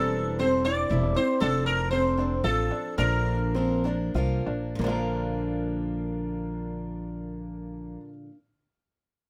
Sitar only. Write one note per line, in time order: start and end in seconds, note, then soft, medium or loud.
0.00 0.39 A4 loud
0.39 0.64 C5 loud
0.65 1.16 D5 loud
1.16 1.40 C5 loud
1.41 1.64 A4 medium
1.66 1.90 A#4 medium
1.91 2.40 C5 loud
2.44 2.94 A4 medium
2.98 4.10 A#4 medium